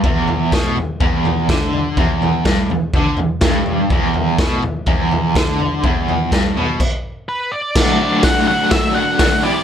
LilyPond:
<<
  \new Staff \with { instrumentName = "Lead electric guitar" } { \time 4/4 \key e \minor \tempo 4 = 124 r1 | r1 | r1 | r2. b'8 d''8~ |
d''4 fis''8 fis''8 e''8 fis''4 d''8 | }
  \new Staff \with { instrumentName = "Overdriven electric guitar" } { \clef bass \time 4/4 \key e \minor e,4 b,8 r8 e,4 d4 | e,4 g,8 e,8 d8 e,8 g,4 | e,4 b,8 r8 e,4 d4 | e,4 g,8 b,8 r2 |
<d fis a d' fis'>8 <d fis a d' fis'>8 <d fis a d' fis'>8 <d fis a d' fis'>8 <d fis a d' fis'>8 <d fis a d' fis'>8 <d fis a d' fis'>8 <e b e' g'>8 | }
  \new DrumStaff \with { instrumentName = "Drums" } \drummode { \time 4/4 <bd tomfh>8 tomfh8 <bd sn tomfh>8 tomfh8 <bd tomfh>8 tomfh8 <bd sn tomfh>8 tomfh8 | <bd tomfh>8 tomfh8 <bd sn tomfh>8 tomfh8 <bd tomfh>8 tomfh8 <bd sn tomfh>8 tomfh8 | <bd tomfh>8 tomfh8 <bd sn tomfh>8 tomfh8 <bd tomfh>8 tomfh8 <bd sn tomfh>8 tomfh8 | <bd tomfh>8 tomfh8 <bd sn tomfh>8 tomfh8 <cymc bd>4 r4 |
<cymc bd sn>4 <hho bd sn>4 <hho bd sn>4 <hho bd sn>4 | }
>>